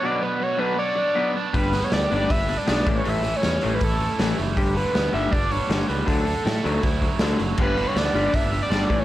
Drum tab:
CC |--------|--------|--------|--------|
HH |--------|oooooooo|oooooooo|oooooooo|
SD |--------|-oo---o-|--o---o-|--o---o-|
BD |--------|o---o--o|----o---|o---o---|

CC |--------|x-------|
HH |oooooooo|-ooooooo|
SD |--o---o-|--o---o-|
BD |o---oo--|o---o--o|